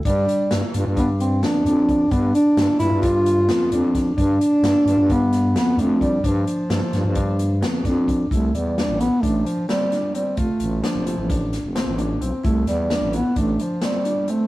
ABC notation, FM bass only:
X:1
M:9/8
L:1/16
Q:3/8=87
K:Gmix
V:1 name="FM bass" clef=bass
G,,2 z2 G,, z G,, G,,4- G,, F,,2 F,,4 | G,,2 z2 G,, z G,, G,,4- G,, F,,2 F,,4 | G,,2 z2 G,, z G,, G,,4- G,, F,,2 F,,4 | G,,2 z2 G,, z G,, G,,4- G,, F,,2 F,,4 |
C,,2 E,,3 A,,,2 z A,,,2 z8 | F,,, z A,,,2 z F,,,2 A,,,4 F,,,2 A,,,3 B,,, z | C,,2 E,,3 A,,,2 z A,,,2 z8 |]